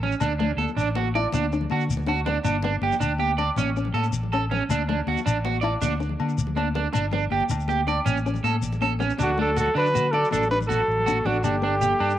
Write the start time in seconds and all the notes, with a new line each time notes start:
Already playing: A1
0.03 C#4, low conga
0.12 shekere
0.20 D2 D4, high conga, low agogo, shekere
0.39 A3 D4, low conga
0.57 D2 A4, high conga, low conga
0.67 low conga, shekere
0.76 A1 D4, low agogo, shekere
0.95 F#4, high conga, low conga
1.15 E4 D5, low agogo
1.32 D2 D4, high conga, low conga, shekere
1.52 D4, shekere
1.61 low conga
1.70 D3 F#4, high conga, low agogo
1.80 shekere
1.89 D2, shekere
1.97 low conga
2.06 D4 F#4, high conga, low conga, low agogo
2.26 B3 D4, low conga
2.44 G1 D4, high conga, low agogo, shekere
2.63 B3 D4, low conga
2.81 G1 G4, high conga, low conga
2.91 low conga, shekere
3.00 D2 D4, low agogo, shekere
3.19 G4, high conga
3.38 D4 D5, low agogo
3.56 A1 C#4, high conga, low conga, shekere
3.77 C#4, shekere
3.85 low conga
3.94 A2 A4, high conga, low agogo
4.04 shekere
4.12 A1, shekere
4.23 low conga
4.33 C#4 A4, low conga, low agogo
4.51 B3 C#4, low conga
4.69 D2 D4, high conga, low agogo, shekere
4.89 A3 D4, low conga
5.07 D2 F#4, high conga
5.17 low conga, shekere
5.26 A1 D4, low agogo, shekere
5.45 F#4, high conga, low conga
5.61 E4 D5, low agogo
5.82 D2 D4, high conga, low conga, shekere
6.00 D4, shekere
6.09 low conga
6.20 D3, high conga, low agogo
6.29 shekere
6.38 D2, shekere
6.47 low conga
6.56 D4, high conga, low conga, low agogo
6.75 B3 D4, low conga
6.93 G1 D4, high conga, low agogo, shekere
7.11 B3 D4, low conga
7.31 G1 G4, high conga
7.40 low conga
7.49 D2, muted clean electric guitar stroke, low agogo, shekere
7.58 low conga, shekere
7.68 G4, high conga, low conga, shekere
7.87 D4 D5, low conga, low agogo, shekere
8.06 A1 C#4, high conga, low conga, shekere
8.16 low conga, shekere
8.25 C#4, low conga, shekere
8.34 low conga, shekere
8.44 A2 A4, high conga, low conga, low agogo, shekere
8.53 low conga
8.62 A1, low conga, shekere
8.73 low conga, shekere
8.81 C#4 A4, high conga, low agogo
8.90 low conga
8.99 B3 C#4, low conga, shekere
9.09 low conga, shekere
9.19 D2 D4, high conga, low conga, low agogo, shekere
9.23 D3 F#4
9.29 low conga
9.38 F#3 A3 D4 A4
9.57 F#3 F#4 A4, high conga, shekere
9.66 low conga
9.75 D3 F#3 D4 B4, low agogo
9.86 shekere
9.94 F#4, high conga, low conga, shekere
10.12 F#3 A4 D5, muted nylon-string guitar stroke, low agogo
10.24 shekere
10.31 A1 D4 A4, high conga, low conga, shekere
10.35 F#3
10.42 low conga, shekere
10.51 G3 D4 B4
10.60 low conga, shekere
10.67 F#4 A4, high conga, low agogo, shekere
10.72 F#3
10.88 A1, low conga, shekere
10.97 low conga
11.06 D4 F#4, high conga, low agogo, shekere
11.25 A1 D3 B3 D4 F#4, low conga
11.44 G1 D3 D4 G4, high conga, low conga, low agogo, shekere
11.54 low conga
11.62 B3 D4
11.81 G4, high conga, shekere
11.91 low conga
12.00 G2 D4, low agogo
12.10 shekere